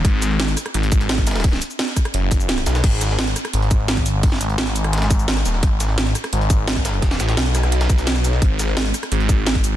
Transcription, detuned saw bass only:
0.05 G#1
0.74 G#1
2.14 F#1
2.66 B1
2.84 G#1
3.53 G#1
4.14 G1
4.41 G#1
5.28 G#1
5.45 D#1
5.63 G#1
6.33 G#1
7.20 A1
7.37 B1
7.90 B1
8.42 G#1
9.12 G#1
9.73 G1

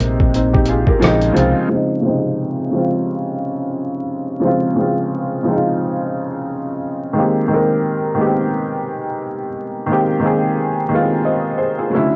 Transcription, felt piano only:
Already playing: C3 G3 G#3 A#3 C4 D#4
0.35 C4 D#4
0.53 D#4 G4
0.68 F4 G#4
0.88 G4 A#4
0.99 C#3 F3 G#3
1.04 C4 D#4
1.33 C#3 F3 G#3
1.37 C4 F4
1.68 C#3 F3 G#3
1.73 C4 D#4
2.01 C3 F3 G#3
2.06 C#3 C4 D#4
2.71 C#3 F3 G#3
2.76 C4 F4
4.40 C#3 F3 G#3
4.45 C4 F4
4.75 C#3 F3 G#3
4.80 C4 F4
5.43 C#3 F3 G#3
5.48 C4 D#4
5.56 F4
7.13 D#3 G#3 A#3
7.18 C4 G4
7.48 D#3 G#3 A#3
7.52 C4 A#4
8.15 D#3 G#3 A#3
8.19 B3 G4
8.26 C4
9.86 D#3 G#3 A#3
9.91 C4 G4
10.20 D#3 G#3 A#3
10.24 C4 G#4
10.89 D#3 G#3 A#3
10.93 B3 F4
11.00 C4
11.25 C5 D#5
11.58 G#4 C5
11.79 F4 G#4
11.90 C#3 F#3 A3
11.95 D3 C#4 E4

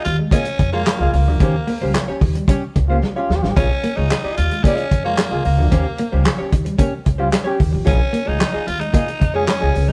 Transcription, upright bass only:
0.06 D#2
0.59 F2
1.00 C#2
1.13 C#2
1.27 D2
1.41 D#2
1.82 C#2
2.09 muted upright bass stroke
2.22 D#2
2.76 C#2
3.30 D#2
3.44 A1
3.57 A#1
3.97 C#2
4.24 muted upright bass stroke
4.38 D#2
4.92 F2
5.32 C#2
5.45 C#2
5.59 D2
5.72 D#2
6.13 C#2
6.40 muted upright bass stroke
6.53 D#2
7.07 C#2
7.60 D#2
7.74 A1
7.87 A#1
8.28 C#2
8.55 muted upright bass stroke
8.68 D#2
9.22 F2
9.62 C#2
9.76 C#2

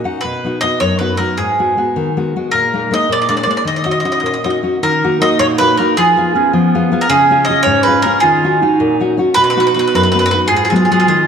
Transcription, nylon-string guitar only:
0.04 C#4 D#4 F#4 F#5
0.24 B2
0.44 B3 D#4 F#4
0.63 B3 D#4 F#4
0.81 F#2
1.01 B3 D#4 F#4
1.19 B3 D#4 F#4
1.38 G#2
1.59 G#3 B3 F#4
1.77 G#3 B3 F#4
1.96 D#3
2.17 G#3 B3 F#4
2.36 G#3 B3 F#4
2.54 A#2
2.74 G#3 A#3 D#4
2.91 G#3 A#3 D#4
3.09 A#2
3.29 G#3 A#3 D4
3.46 G#3 A#3 D4
3.65 D#3
3.85 C#4 D#4 F#4
4.05 C#4 D#4 F#4
4.23 A#2
4.45 C#4 D#4 F#4
4.63 C#4 D#4 F#4
4.83 D#3
5.04 A#3 D#4 F#4
5.21 A#3 D#4 F#4
5.40 A#2
5.60 A#3 D#4 F#4
5.79 A#3 D#4 F#4
5.98 F3
6.17 B3 F4 G#4
6.35 B3 F4 G#4
6.53 F3
6.75 B3 F4 G#4
6.92 B3 F4 G#4
7.10 C#3
7.31 C#4 F4 G#4
7.49 C#4 F4 G#4
7.66 G#2
7.88 C#4 F4 G#4
8.05 C#4 F4 G#4
8.23 D#3
8.44 C#4 D#4 F#4
8.62 C#4 D#4 F#4
8.80 A#2
9.00 C#4 D#4 F#4
9.17 C#4 D#4 F#4
9.37 B2
9.57 B3 D#4 F#4
9.75 B3 D#4 F#4
9.95 F#2
10.15 B3 D#4 F#4
10.33 B3 D#4 F#4
10.51 G#2
10.72 F#3 G#3 B3
10.90 F#3 G#3 B3
11.07 D#3

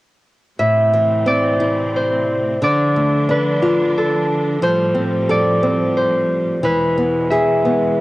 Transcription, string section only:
0.60 C3 A3 C4
2.64 D3 F3 D4
4.61 A2 G3
6.62 E2 B2 G#3

